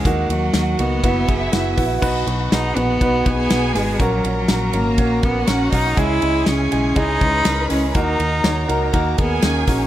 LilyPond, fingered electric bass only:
\new Staff \with { instrumentName = "Fingered electric bass" } { \clef bass \time 4/4 \key b \major \tempo 4 = 122 dis,8 dis,8 dis,8 cis,8 fis,,8 fis,,8 fis,,8 ais,,8 | b,,8 b,,8 b,,8 ais,,8 b,,8 r8 b,,8 gis,,8 | ais,,8 ais,,8 ais,,8 gis,,8 ais,,8 ais,,8 ais,,8 b,,8 | cis,8 cis,8 cis,8 b,,8 cis,8 cis,8 cis,8 cis,8 |
dis,8 dis,8 dis,8 cis,8 dis,8 dis,8 dis,8 ais,,8 | }